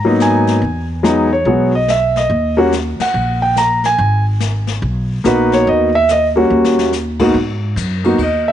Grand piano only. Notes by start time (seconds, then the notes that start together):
Already playing: A#5
0.05 F#3 A#3 B3 D#4
0.22 G#5
1.03 F#3 G#3 B3 D#4
1.33 C#5
1.46 F#3 G#3 B3 F#4
1.75 D#5
1.90 E5
2.17 D#5
2.57 G3 A#3 C#4 F#4
3.02 F#5
3.42 G5
3.58 A#5
3.86 G#5
5.24 A#3 B3 D#4 F#4 B4
5.54 C#5
5.69 D#5
5.95 E5
6.11 D#5
6.36 G3 A#3 C#4 F#4
7.20 G#2 A#3 B3 D#4 F#4
8.04 A#3 B3 D#4 F#4
8.23 D#5
8.48 E5